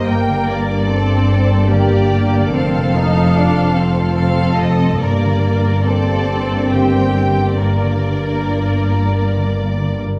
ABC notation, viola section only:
X:1
M:3/4
L:1/16
Q:1/4=71
K:Gm
V:1 name="Viola section"
B,4 C4 B,2 B,2 | C2 E2 D2 C6 | B,4 C8 | B,8- B,3 z |]